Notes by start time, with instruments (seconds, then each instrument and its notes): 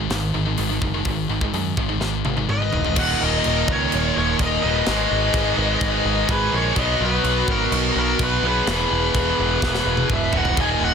0.10 picked electric bass G#1, distorted electric guitar G#2 D#3, snare, open hi-hat
0.34 picked electric bass G#1, distorted electric guitar G#2 D#3
0.47 distorted electric guitar G#2 D#3
0.58 picked electric bass G#1, distorted electric guitar G#2 D#3, open hi-hat
0.71 distorted electric guitar G#2 D#3
0.81 picked electric bass F#1, distorted electric guitar G#2 D#3, kick
0.94 distorted electric guitar G#2 D#3
1.05 picked electric bass G#1, distorted electric guitar G#2 D#3, kick, open hi-hat
1.29 picked electric bass G#1, distorted electric guitar G#2 D#3
1.41 distorted electric guitar G#2 D#3, kick
1.53 picked electric bass F#2, distorted electric guitar G#2 D#3, open hi-hat
1.77 picked electric bass G#1, distorted electric guitar G#2 D#3, kick
1.89 distorted electric guitar G#2 D#3
2.00 picked electric bass G#1, distorted electric guitar G#2 D#3, snare
2.25 picked electric bass G#1, distorted electric guitar G#2 D#3, high tom
2.37 distorted electric guitar G#2 D#3, high tom
2.49 picked electric bass G#1, distorted electric guitar G#2 D#3, lead electric guitar B4 D#5, mid tom
2.61 distorted electric guitar G#2 D#3
2.72 picked electric bass E1, distorted electric guitar G#2 D#3, floor tom
2.83 distorted electric guitar G#2 D#3, floor tom
2.96 picked electric bass D#1, distorted electric guitar D#2 A#2, lead electric guitar D#5 F#5, kick, crash
3.00 distorted electric guitar D#3
3.20 picked electric bass D#1, lead electric guitar A#4 D#5
3.44 picked electric bass D#1, crash
3.67 picked electric bass C#2, lead electric guitar A#4, kick
3.72 lead electric guitar C#5
3.92 picked electric bass D#1, crash
4.17 picked electric bass D#1, lead electric guitar A#4 C#5
4.39 picked electric bass D#1, lead electric guitar A#4 D#5, kick, crash
4.63 picked electric bass D#1, distorted electric guitar A#2 D#3, lead electric guitar B4 D#5
4.67 distorted electric guitar D#2
4.86 picked electric bass G#1, distorted electric guitar G#2 D#3 G#3, snare, crash
5.11 picked electric bass G#1
5.33 picked electric bass G#1, kick, crash
5.57 picked electric bass G#1
5.81 picked electric bass G#1, kick, crash
6.05 picked electric bass G#1
6.28 picked electric bass G#1, lead electric guitar G#4 B4, kick, crash
6.52 picked electric bass A#1, distorted electric guitar G#2 D#3 G#3, lead electric guitar A#4 C#5
6.75 picked electric bass B1, distorted electric guitar B2 F#3 B3, lead electric guitar B4, kick, crash
6.80 lead electric guitar D#5
7.00 picked electric bass B1, lead electric guitar F#4
7.04 lead electric guitar B4
7.24 picked electric bass B1, crash
7.47 picked electric bass G#1, lead electric guitar F#4 A#4, kick
7.72 picked electric bass B1, crash
7.96 picked electric bass B1, lead electric guitar F#4 A#4
8.19 picked electric bass B1, lead electric guitar F#4, kick, crash
8.24 lead electric guitar B4
8.42 picked electric bass B1, distorted electric guitar F#3 B3, lead electric guitar G#4
8.47 distorted electric guitar B2, lead electric guitar B4
8.67 picked electric bass E1, distorted electric guitar E2 B2 E3, snare, crash
8.91 picked electric bass E1
9.14 picked electric bass E1, kick, crash
9.39 picked electric bass E1
9.62 picked electric bass E1, kick, snare
9.75 snare
9.85 picked electric bass E1
9.97 high tom
10.09 picked electric bass E1, lead electric guitar B4, kick, mid tom
10.13 lead electric guitar E5
10.33 picked electric bass E1, distorted electric guitar B2 E3, lead electric guitar D#5, floor tom
10.37 distorted electric guitar E2, lead electric guitar F#5
10.45 floor tom
10.57 picked electric bass D#1, distorted electric guitar D#2 A#2, lead electric guitar D#5, kick, crash
10.61 distorted electric guitar D#3, lead electric guitar G#5
10.81 picked electric bass D#1, lead electric guitar D#5
10.85 lead electric guitar F#5